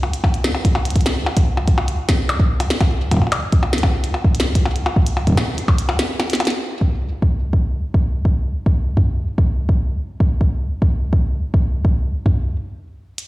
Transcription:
0.03 percussion blips soft
0.14 closed hi-hat medium
0.24 kick loud
0.24 percussion blips medium
0.34 closed hi-hat soft
0.44 snare loud
0.55 percussion blips medium
0.65 kick loud
0.65 closed hi-hat medium
0.75 percussion blips medium
0.85 closed hi-hat medium
0.91 closed hi-hat medium
0.96 kick medium
0.96 closed hi-hat medium
1.01 closed hi-hat soft
1.06 snare loud
1.06 percussion blips soft
1.26 percussion blips medium
1.37 kick loud
1.37 closed hi-hat medium
1.57 percussion blips soft
1.68 kick loud
1.68 closed hi-hat soft
1.78 percussion blips medium
1.88 closed hi-hat medium
2.09 kick loud
2.09 snare loud
2.09 closed hi-hat medium
2.09 percussion blips soft
2.29 closed hi-hat soft
2.29 percussion blips medium
2.40 kick loud
2.60 closed hi-hat medium
2.60 percussion blips medium
2.70 snare loud
2.81 kick loud
2.81 closed hi-hat soft
2.81 percussion blips medium
3.11 kick medium
3.11 closed hi-hat medium
3.11 percussion blips soft
3.14 kick medium
3.14 percussion blips soft
3.17 kick medium
3.19 kick medium
3.19 percussion blips soft
3.27 percussion blips soft
3.32 closed hi-hat medium
3.32 percussion blips medium
3.52 kick loud
3.52 closed hi-hat soft
3.63 percussion blips medium
3.73 snare loud
3.78 closed hi-hat medium
3.83 kick loud
3.83 percussion blips medium
4.04 closed hi-hat medium
4.14 percussion blips medium
4.24 kick loud
4.35 closed hi-hat medium
4.40 snare loud
4.55 kick loud
4.55 closed hi-hat medium
4.66 percussion blips medium
4.76 closed hi-hat medium
4.86 percussion blips medium
4.96 kick loud
5.07 closed hi-hat medium
5.17 percussion blips medium
5.27 kick loud
5.27 closed hi-hat soft
5.30 kick medium
5.32 kick medium
5.35 kick medium
5.35 snare loud
5.35 percussion blips medium
5.58 closed hi-hat medium
5.68 kick loud
5.68 percussion blips medium
5.78 closed hi-hat medium
5.89 percussion blips medium
5.99 snare loud
5.99 closed hi-hat medium
6.20 snare medium
6.20 percussion blips medium
6.30 snare medium
6.30 closed hi-hat medium
6.35 closed hi-hat medium
6.40 closed hi-hat medium
6.40 percussion blips medium
6.45 snare medium
6.45 closed hi-hat medium
6.50 closed hi-hat soft
6.81 kick medium
7.22 kick loud
7.53 kick medium
7.94 kick loud
8.25 kick loud
8.66 kick loud
8.97 kick loud
8.97 mid tom medium
9.38 kick loud
9.69 kick loud
10.20 kick loud
10.41 kick loud
10.82 kick loud
11.13 kick loud
11.54 kick loud
11.85 kick loud
12.26 kick loud
12.26 mid tom medium
13.18 closed hi-hat medium

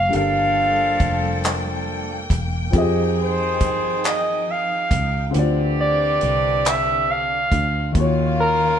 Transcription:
0.00 0.10 F#4 medium
0.00 0.11 D#5 medium
0.00 0.15 F5 loud
0.09 2.67 G3 medium
0.09 2.68 D4 medium
0.09 2.69 A4 medium
0.13 0.97 G1 medium
0.13 2.26 F3 medium
0.13 2.71 G3 medium
0.13 2.71 A#3 medium
0.13 2.26 D4 medium
0.13 2.26 A4 medium
0.13 2.70 A#4 medium
0.13 2.71 F5 medium
0.13 1.41 F5 loud
0.13 5.31 G5 medium
0.13 closed hi-hat medium
1.00 2.27 F1 medium
1.00 kick loud
1.00 closed hi-hat medium
1.44 clap loud
1.44 closed hi-hat medium
2.30 2.70 E1 medium
2.30 kick loud
2.30 closed hi-hat medium
2.71 3.62 F2 loud
2.71 4.87 D#3 medium
2.71 5.29 F3 medium
2.71 5.32 F3 medium
2.71 5.30 C4 medium
2.71 4.87 C4 medium
2.71 5.32 D#4 medium
2.71 5.31 G4 medium
2.71 4.87 G#4 medium
2.71 kick loud
2.71 closed hi-hat medium
2.76 5.32 G#4 medium
2.76 5.33 D#5 medium
3.20 4.02 C5 medium
3.61 4.93 G2 medium
3.61 kick medium
3.61 closed hi-hat medium
4.04 4.53 D#5 loud
4.04 clap loud
4.04 closed hi-hat medium
4.51 5.36 F5 loud
4.91 5.31 C#2 loud
4.91 kick loud
4.91 closed hi-hat medium
5.31 7.89 D3 medium
5.31 7.90 C4 medium
5.31 7.91 D4 medium
5.31 7.93 D4 medium
5.31 closed hi-hat medium
5.35 6.18 D2 loud
5.35 7.93 D3 medium
5.35 7.48 E3 medium
5.35 7.93 F3 medium
5.35 7.93 C4 medium
5.35 7.48 C4 medium
5.35 7.48 G4 medium
5.39 7.94 D5 medium
5.81 6.70 D5 loud
6.21 7.49 C2 medium
6.21 closed hi-hat medium
6.65 7.13 E5 loud
6.65 clap loud
6.65 closed hi-hat medium
7.11 7.97 F5 loud
7.52 7.92 D2 loud
7.52 kick loud
7.52 closed hi-hat medium
7.92 8.79 D#2 loud
7.92 8.79 C#3 medium
7.92 8.79 D#3 medium
7.92 8.79 A#3 medium
7.92 8.79 C#4 medium
7.92 8.79 F4 medium
7.92 8.79 F5 medium
7.92 kick loud
7.92 closed hi-hat medium
7.98 8.79 F#4 medium
7.98 8.79 C#5 medium
8.40 8.79 A#4 loud

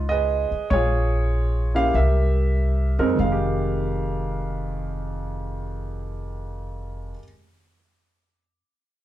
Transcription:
0.00 0.47 C#2 medium
0.00 0.48 D#4 medium
0.00 0.48 F4 medium
0.09 0.68 G#4 medium
0.09 0.68 B4 medium
0.09 0.73 D#5 medium
0.51 muted upright bass stroke soft
0.70 1.91 A#1 medium
0.70 1.92 F4 medium
0.70 1.92 G#4 medium
0.70 1.71 C#5 medium
1.75 1.93 A#3 medium
1.75 1.93 C#4 medium
1.75 1.93 E4 medium
1.75 1.93 G4 medium
1.75 1.96 F5 medium
1.94 2.95 C2 medium
1.94 3.16 G4 medium
1.94 2.98 A#4 medium
1.94 2.95 E5 medium
2.99 3.05 F2 medium
2.99 3.17 F#2 medium
2.99 3.17 G#3 medium
2.99 3.17 C4 medium
2.99 3.17 D#4 medium
2.99 3.17 A#4 medium
3.07 7.10 F2 medium
3.15 7.12 F1 medium
3.15 7.15 D#3 medium
3.20 7.13 F5 medium
3.24 7.19 G#3 medium
3.32 7.23 G4 medium

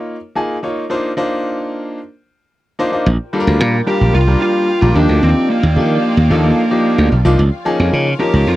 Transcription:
0.00 0.15 A#3 medium
0.00 0.15 D#4 medium
0.00 0.15 F4 medium
0.00 0.16 C#5 loud
0.35 0.56 A#3 medium
0.35 0.56 D#4 medium
0.35 0.56 F4 medium
0.35 0.56 G#4 loud
0.63 0.83 A#3 medium
0.63 0.83 D#4 medium
0.63 0.83 F4 medium
0.63 0.84 C#5 medium
0.90 1.10 A#3 medium
0.90 1.10 D4 medium
0.90 1.10 D#4 medium
0.90 1.10 F4 medium
0.90 1.10 C5 loud
1.17 1.98 A#3 medium
1.17 1.98 D4 medium
1.17 1.98 D#4 medium
1.17 1.98 F4 medium
1.17 1.98 C5 loud
2.79 2.89 A#3 medium
2.79 2.89 D4 medium
2.79 2.89 D#4 medium
2.79 2.89 F4 medium
2.79 2.89 C5 loud
2.92 3.06 A#3 medium
2.92 3.06 D4 medium
2.92 3.06 D#4 medium
2.92 3.06 F4 medium
2.92 3.06 C5 medium
3.06 3.16 A#1 loud
3.06 4.94 F4 medium
3.06 4.93 A#4 medium
3.06 4.94 D5 medium
3.06 7.35 G5 medium
3.33 3.73 G3 medium
3.33 3.74 A#3 medium
3.33 3.74 D4 medium
3.33 3.74 F4 medium
3.33 3.40 A4 medium
3.40 3.77 A#4 loud
3.47 3.60 D2 loud
3.60 3.80 A#2 loud
3.87 4.17 G3 medium
3.87 4.17 A#3 medium
3.87 4.17 D4 medium
3.87 4.18 F4 medium
3.87 4.13 G4 loud
3.87 4.18 A#4 loud
4.01 4.11 A#1 medium
4.15 4.35 C2 loud
4.15 4.41 F4 loud
4.27 4.68 G3 medium
4.27 4.68 A#3 medium
4.27 4.68 D4 medium
4.27 4.68 F4 medium
4.27 4.68 A#4 medium
4.42 4.96 F4 loud
4.81 4.92 A#1 medium
4.81 4.95 G3 medium
4.81 4.94 A#3 medium
4.81 4.94 D4 medium
4.81 4.95 F4 medium
4.81 4.96 A#4 medium
4.95 5.06 D#2 loud
4.95 5.60 F3 medium
4.95 5.60 A#3 medium
4.95 5.60 D4 medium
4.95 5.21 D4 medium
4.95 5.60 D#4 medium
4.95 7.36 F4 medium
4.95 5.61 G4 loud
4.95 7.37 D5 medium
4.95 7.37 F5 medium
5.09 5.19 D2 loud
5.23 5.33 D#2 loud
5.23 5.50 C4 medium
5.50 7.08 A#3 medium
5.63 5.78 D#2 loud
5.76 5.97 D#3 loud
5.76 6.17 F3 medium
5.76 6.17 A#3 medium
5.76 6.17 D4 medium
5.76 6.17 D#4 medium
5.76 6.17 G4 medium
6.17 6.27 D#2 medium
6.30 6.51 D#2 loud
6.30 6.61 F3 loud
6.30 6.61 A#3 medium
6.30 6.61 D4 medium
6.30 6.61 D#4 medium
6.30 6.61 A4 loud
6.70 7.11 F3 medium
6.70 7.11 A#3 medium
6.70 7.11 D4 medium
6.70 7.11 D#4 medium
6.70 7.11 G4 medium
6.98 7.08 D2 medium
7.12 7.22 B1 medium
7.25 7.35 C2 loud
7.25 7.39 F3 loud
7.25 7.39 A#3 loud
7.25 7.39 D4 medium
7.25 7.39 D#4 loud
7.25 7.39 F4 loud
7.39 7.49 C#2 loud
7.39 8.56 F4 medium
7.39 8.56 C#5 medium
7.39 8.56 F5 medium
7.65 8.06 F3 loud
7.65 8.06 A#3 medium
7.65 8.06 C#4 loud
7.65 8.06 D#4 medium
7.65 8.06 G#4 loud
7.80 7.90 F2 loud
7.93 8.13 C#3 loud
8.19 8.50 F3 medium
8.19 8.50 A#3 medium
8.19 8.50 C#4 medium
8.19 8.50 D#4 medium
8.19 8.48 G4 medium
8.19 8.50 A#4 medium
8.34 8.44 C#2 medium
8.47 8.56 F2 loud
8.47 8.56 F4 loud

